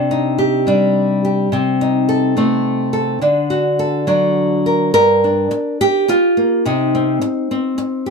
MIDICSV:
0, 0, Header, 1, 3, 480
1, 0, Start_track
1, 0, Key_signature, -2, "minor"
1, 0, Tempo, 568182
1, 1286, Time_signature, 3, 2, 24, 8
1, 6844, End_track
2, 0, Start_track
2, 0, Title_t, "Nylon-string guitar"
2, 0, Program_c, 0, 24
2, 0, Note_on_c, 0, 48, 60
2, 0, Note_on_c, 0, 62, 48
2, 92, Note_on_c, 0, 63, 49
2, 326, Note_on_c, 0, 67, 52
2, 562, Note_off_c, 0, 62, 0
2, 564, Note_on_c, 0, 55, 52
2, 572, Note_on_c, 0, 62, 52
2, 1044, Note_off_c, 0, 67, 0
2, 1053, Note_on_c, 0, 67, 48
2, 1253, Note_off_c, 0, 55, 0
2, 1255, Note_off_c, 0, 63, 0
2, 1257, Note_off_c, 0, 62, 0
2, 1274, Note_off_c, 0, 48, 0
2, 1285, Note_on_c, 0, 48, 56
2, 1288, Note_off_c, 0, 67, 0
2, 1293, Note_on_c, 0, 60, 52
2, 1531, Note_on_c, 0, 63, 50
2, 1763, Note_on_c, 0, 69, 51
2, 1995, Note_off_c, 0, 60, 0
2, 1999, Note_on_c, 0, 57, 58
2, 2005, Note_on_c, 0, 60, 49
2, 2465, Note_off_c, 0, 69, 0
2, 2475, Note_on_c, 0, 69, 48
2, 2686, Note_off_c, 0, 57, 0
2, 2686, Note_off_c, 0, 69, 0
2, 2689, Note_off_c, 0, 60, 0
2, 2690, Note_off_c, 0, 63, 0
2, 2712, Note_off_c, 0, 48, 0
2, 2716, Note_on_c, 0, 50, 56
2, 2721, Note_on_c, 0, 62, 52
2, 2958, Note_on_c, 0, 66, 45
2, 3204, Note_on_c, 0, 69, 46
2, 3434, Note_off_c, 0, 62, 0
2, 3439, Note_on_c, 0, 54, 54
2, 3444, Note_on_c, 0, 62, 50
2, 3931, Note_off_c, 0, 69, 0
2, 3938, Note_on_c, 0, 70, 49
2, 4142, Note_off_c, 0, 54, 0
2, 4143, Note_off_c, 0, 50, 0
2, 4143, Note_off_c, 0, 66, 0
2, 4145, Note_off_c, 0, 62, 0
2, 4147, Note_off_c, 0, 70, 0
2, 4172, Note_on_c, 0, 70, 94
2, 4178, Note_on_c, 0, 43, 61
2, 4428, Note_on_c, 0, 62, 40
2, 4644, Note_off_c, 0, 43, 0
2, 4900, Note_off_c, 0, 70, 0
2, 4907, Note_on_c, 0, 67, 90
2, 5143, Note_off_c, 0, 62, 0
2, 5147, Note_on_c, 0, 65, 83
2, 5382, Note_on_c, 0, 58, 40
2, 5621, Note_off_c, 0, 58, 0
2, 5622, Note_on_c, 0, 48, 66
2, 5623, Note_off_c, 0, 65, 0
2, 5625, Note_off_c, 0, 67, 0
2, 5627, Note_on_c, 0, 63, 73
2, 5869, Note_on_c, 0, 60, 43
2, 6097, Note_off_c, 0, 48, 0
2, 6341, Note_off_c, 0, 60, 0
2, 6345, Note_on_c, 0, 60, 47
2, 6811, Note_on_c, 0, 67, 44
2, 6844, Note_off_c, 0, 60, 0
2, 6844, Note_off_c, 0, 63, 0
2, 6844, Note_off_c, 0, 67, 0
2, 6844, End_track
3, 0, Start_track
3, 0, Title_t, "Muted nylon-string guitar strokes"
3, 4654, Note_on_c, 9, 29, 60
3, 4738, Note_off_c, 9, 29, 0
3, 5140, Note_on_c, 9, 29, 59
3, 5224, Note_off_c, 9, 29, 0
3, 6095, Note_on_c, 9, 29, 59
3, 6180, Note_off_c, 9, 29, 0
3, 6571, Note_on_c, 9, 29, 58
3, 6655, Note_off_c, 9, 29, 0
3, 6844, End_track
0, 0, End_of_file